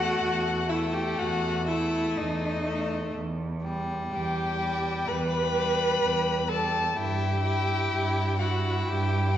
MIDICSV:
0, 0, Header, 1, 5, 480
1, 0, Start_track
1, 0, Key_signature, 1, "minor"
1, 0, Tempo, 983607
1, 1538, Time_signature, 4, 2, 24, 8
1, 2015, Tempo, 952381
1, 4660, End_track
2, 0, Start_track
2, 0, Title_t, "Violin"
2, 0, Program_c, 0, 40
2, 0, Note_on_c, 0, 78, 98
2, 338, Note_on_c, 0, 76, 75
2, 345, Note_off_c, 0, 78, 0
2, 458, Note_on_c, 0, 79, 79
2, 466, Note_off_c, 0, 76, 0
2, 578, Note_on_c, 0, 78, 84
2, 585, Note_off_c, 0, 79, 0
2, 811, Note_off_c, 0, 78, 0
2, 814, Note_on_c, 0, 76, 86
2, 1060, Note_on_c, 0, 75, 78
2, 1067, Note_off_c, 0, 76, 0
2, 1538, Note_off_c, 0, 75, 0
2, 2019, Note_on_c, 0, 79, 87
2, 2493, Note_on_c, 0, 83, 90
2, 2500, Note_off_c, 0, 79, 0
2, 3201, Note_on_c, 0, 81, 85
2, 3209, Note_off_c, 0, 83, 0
2, 3445, Note_on_c, 0, 79, 94
2, 3452, Note_off_c, 0, 81, 0
2, 4161, Note_on_c, 0, 78, 76
2, 4168, Note_off_c, 0, 79, 0
2, 4400, Note_off_c, 0, 78, 0
2, 4403, Note_on_c, 0, 79, 82
2, 4656, Note_off_c, 0, 79, 0
2, 4660, End_track
3, 0, Start_track
3, 0, Title_t, "Viola"
3, 0, Program_c, 1, 41
3, 0, Note_on_c, 1, 66, 85
3, 339, Note_on_c, 1, 64, 65
3, 347, Note_off_c, 1, 66, 0
3, 458, Note_on_c, 1, 67, 71
3, 465, Note_off_c, 1, 64, 0
3, 579, Note_on_c, 1, 66, 72
3, 587, Note_off_c, 1, 67, 0
3, 821, Note_on_c, 1, 64, 70
3, 828, Note_off_c, 1, 66, 0
3, 1064, Note_on_c, 1, 63, 67
3, 1071, Note_off_c, 1, 64, 0
3, 1540, Note_off_c, 1, 63, 0
3, 2016, Note_on_c, 1, 67, 73
3, 2494, Note_on_c, 1, 71, 82
3, 2502, Note_off_c, 1, 67, 0
3, 3204, Note_on_c, 1, 69, 64
3, 3211, Note_off_c, 1, 71, 0
3, 3446, Note_on_c, 1, 67, 73
3, 3454, Note_off_c, 1, 69, 0
3, 4163, Note_off_c, 1, 67, 0
3, 4166, Note_on_c, 1, 66, 68
3, 4412, Note_on_c, 1, 67, 70
3, 4420, Note_off_c, 1, 66, 0
3, 4660, Note_off_c, 1, 67, 0
3, 4660, End_track
4, 0, Start_track
4, 0, Title_t, "Violin"
4, 0, Program_c, 2, 40
4, 0, Note_on_c, 2, 57, 58
4, 329, Note_off_c, 2, 57, 0
4, 337, Note_on_c, 2, 57, 54
4, 810, Note_off_c, 2, 57, 0
4, 823, Note_on_c, 2, 57, 53
4, 1287, Note_off_c, 2, 57, 0
4, 1290, Note_on_c, 2, 57, 53
4, 1529, Note_off_c, 2, 57, 0
4, 1773, Note_on_c, 2, 55, 58
4, 2241, Note_off_c, 2, 55, 0
4, 2247, Note_on_c, 2, 55, 55
4, 2715, Note_off_c, 2, 55, 0
4, 2724, Note_on_c, 2, 55, 60
4, 3192, Note_off_c, 2, 55, 0
4, 3200, Note_on_c, 2, 55, 54
4, 3438, Note_off_c, 2, 55, 0
4, 3447, Note_on_c, 2, 64, 52
4, 3681, Note_off_c, 2, 64, 0
4, 3685, Note_on_c, 2, 64, 61
4, 4158, Note_off_c, 2, 64, 0
4, 4172, Note_on_c, 2, 64, 51
4, 4645, Note_off_c, 2, 64, 0
4, 4660, End_track
5, 0, Start_track
5, 0, Title_t, "Cello"
5, 0, Program_c, 3, 42
5, 99, Note_on_c, 3, 40, 67
5, 524, Note_off_c, 3, 40, 0
5, 580, Note_on_c, 3, 40, 72
5, 1004, Note_off_c, 3, 40, 0
5, 1061, Note_on_c, 3, 40, 68
5, 1481, Note_off_c, 3, 40, 0
5, 1538, Note_on_c, 3, 40, 70
5, 1958, Note_off_c, 3, 40, 0
5, 2009, Note_on_c, 3, 40, 66
5, 2434, Note_off_c, 3, 40, 0
5, 2492, Note_on_c, 3, 40, 73
5, 2908, Note_off_c, 3, 40, 0
5, 2963, Note_on_c, 3, 40, 67
5, 3388, Note_off_c, 3, 40, 0
5, 3447, Note_on_c, 3, 43, 68
5, 3871, Note_off_c, 3, 43, 0
5, 3928, Note_on_c, 3, 43, 66
5, 4353, Note_off_c, 3, 43, 0
5, 4409, Note_on_c, 3, 43, 75
5, 4660, Note_off_c, 3, 43, 0
5, 4660, End_track
0, 0, End_of_file